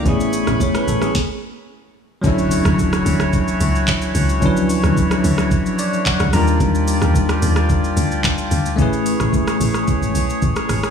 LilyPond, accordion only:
\new Staff \with { instrumentName = "Accordion" } { \time 4/4 \key d \lydian \tempo 4 = 110 <a gis'' b'' cis'''>2 r2 | <e a e' fis' cis''>1~ | <e a e' fis' cis''>2.~ <e a e' fis' cis''>8 <f bes f' g' d''>8~ | <f bes f' g' d''>1 |
<a gis' cis''>1 | }